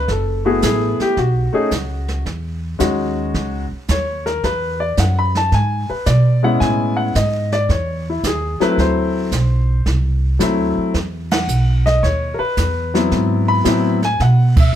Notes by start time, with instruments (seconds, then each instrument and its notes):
0.08 upright bass F#1, grand piano A4, brush sweep, kick, snare
0.45 grand piano A3 B3 E4 F#4 G#4
0.62 upright bass A1, grand piano G#4, kick, snare, hi-hat pedal
0.99 grand piano G4, muted upright bass stroke, snare
1.17 upright bass B1, grand piano F#4, brush sweep, kick, snare
1.53 grand piano A3 C#4 D#4 G#4
1.71 upright bass C#2, kick, snare, hi-hat pedal
2.08 snare
2.26 upright bass E2, brush sweep, kick, snare
2.79 upright bass D#2, grand piano G#3 C#4 D#4 F#4, kick, snare, hi-hat pedal
3.34 upright bass C#2, brush sweep, kick, snare
3.72 muted upright bass stroke
3.88 upright bass D#2, grand piano C#5, kick, snare, hi-hat pedal
4.26 grand piano A#4, snare
4.44 upright bass E2, grand piano B4, brush sweep, kick, snare
4.80 grand piano D5
4.97 upright bass F#2, grand piano F#5, kick, snare, hi-hat pedal
5.19 grand piano B5
5.35 grand piano A5, snare
5.52 upright bass G#2, grand piano G#5, brush sweep, kick, snare
5.90 grand piano B4, muted upright bass stroke
6.06 upright bass B2, grand piano D5, kick, snare, hi-hat pedal
6.43 grand piano G#3 B3 C#4 E4 F#5
6.60 upright bass A2, grand piano G#5, brush sweep, kick, snare
6.97 grand piano F#5
7.15 upright bass G#2, grand piano D#5, kick, snare, hi-hat pedal
7.52 grand piano D5, snare
7.69 upright bass E2, grand piano C#5, brush sweep, kick, snare
8.10 grand piano E4
8.23 upright bass D#2, grand piano G#4, kick, snare, hi-hat pedal
8.60 grand piano F#3 A3 C4 E4 B4, muted upright bass stroke, snare
8.78 upright bass D2, grand piano C5, brush sweep, kick, snare
9.32 upright bass B1, kick, snare, hi-hat pedal
9.86 upright bass C2, brush sweep, kick, snare
10.39 upright bass D2, grand piano F#3 A3 C4 E4, kick, snare, hi-hat pedal
10.78 muted upright bass stroke
10.94 upright bass E2, brush sweep, kick, snare
11.31 grand piano F#5, snare, ride
11.48 upright bass B1, hi-hat pedal
11.86 grand piano D#5, snare
12.03 upright bass D#2, grand piano C#5, brush sweep, kick, snare
12.34 grand piano A#4
12.39 grand piano B4, muted upright bass stroke
12.57 upright bass E2, kick, snare, hi-hat pedal
12.94 grand piano F#3 B3 C4 E4, snare
13.11 upright bass G#2, brush sweep, kick, snare
13.48 grand piano B5
13.64 upright bass A2, grand piano F#3 B3 C4 E4, kick, snare, hi-hat pedal
14.02 grand piano G#5, snare
14.20 upright bass B2, grand piano F#5, brush sweep, kick, snare
14.56 grand piano E5, kick, crash